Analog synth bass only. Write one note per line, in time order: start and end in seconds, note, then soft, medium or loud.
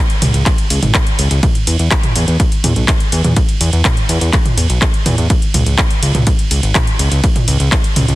0.22 0.32 C#2 medium
0.34 0.44 C#2 medium
0.70 0.80 C#2 loud
0.82 0.92 G#1 medium
1.19 1.29 C#2 loud
1.31 1.41 C#2 medium
1.67 1.77 E2 medium
1.79 1.89 E2 medium
2.16 2.25 E2 medium
2.28 2.37 E2 medium
2.64 2.74 E2 loud
2.76 2.86 B1 medium
3.12 3.22 E2 loud
3.24 3.34 E2 medium
3.61 3.70 E2 medium
3.73 3.82 E2 medium
4.09 4.19 E2 medium
4.21 4.31 E2 medium
4.57 4.67 E2 loud
4.70 4.79 B1 medium
5.06 5.16 E2 loud
5.18 5.28 E2 medium
5.54 5.64 C#2 loud
5.66 5.76 C#2 medium
6.03 6.12 C#2 medium
6.15 6.24 C#2 medium
6.51 6.61 C#2 medium
6.63 6.73 G#1 medium
6.99 7.09 C#2 loud
7.12 7.21 C#2 medium
7.48 7.58 C#2 medium
7.60 7.70 C#2 medium
7.96 8.06 C#2 medium
8.08 8.15 C#2 medium